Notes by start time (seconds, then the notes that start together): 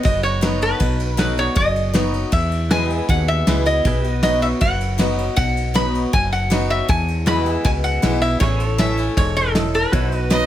Already playing: F#4 B4 D#5
0.03 F#1 F#2 D#5, kick, ride
0.23 C#5, ride
0.41 F#3 B3 D#4 F#4 B4, snare, ride
0.62 B4, ride
0.80 B1 B2, kick, ride
1.00 ride
1.17 F#3 B3 D#4 F#4 A4 B4, snare, ride
1.37 C#5, ride
1.56 F#1 F#2 D#5, kick, ride
1.76 ride
1.94 F#3 B3 D#4 F#4 B4, snare, ride
1.98 C#5
2.13 ride
2.32 E2 E5, kick, ride
2.51 ride
2.71 E3 G#3 B3 E4 F#4 G#4 B4 D#5 G#5, snare, ride
2.90 E5, ride
2.96 G#4
3.09 D#2 B2 F#5, kick, ride
3.28 E5, ride
3.47 C#2 E3 G#3 B3 E4 G#4 B4, snare, ride
3.66 B3 E4 D#5, ride
3.85 B1 B2 G#4 B4 E5, kick, ride
4.04 D#5, ride
4.12 F#4
4.23 F#3 B3 D#4 F#4 B4 D#5, snare, ride
4.42 E5, ride
4.61 F#1 F#2 F#5, kick, ride
4.81 ride
4.98 F#3 B3 D#4 F#4 B4, snare, ride
5.18 ride
5.36 B1 B2 F#5, kick, ride
5.57 ride
5.74 F#3 B3 D#4 F#4 B4 B5, snare, ride
5.95 ride
6.13 F#1 F#2 G#5, kick, ride
6.33 F#5, ride
6.50 F#3 B3 D#4 F#4 B4, snare, ride
6.70 E5, ride
6.88 E2 G#5, kick, ride
7.08 ride
7.26 E3 G#3 B3 E4 F#4 G#4 B4 D#5 B5, snare, ride
7.46 E5, ride
7.52 G#4
7.64 C#2 B2 G#5, kick, ride
7.84 F#5, ride
8.02 B1 E3 G#3 B3 E4 G#4 B4, snare, ride
8.22 B3 E4 E5, ride
8.40 A1 A2 G#4 B4 C#5, kick, ride
8.44 E5
8.60 A4, ride
8.68 C#5
8.78 E3 A3 C#4 E4 A4 C#5 E5, snare, ride
8.97 C#4 E4, ride
9.17 E1 G#2 C#5, kick, ride
9.36 A4, ride
9.55 A2 E4 A4 D#5, snare, ride
9.74 B4, ride
9.92 B1 B2 F#4 C#5 E5, kick, ride
10.12 D#5, ride
10.18 B4
10.30 F#3 B3 D#4 F#4 B4 D#5, snare, ride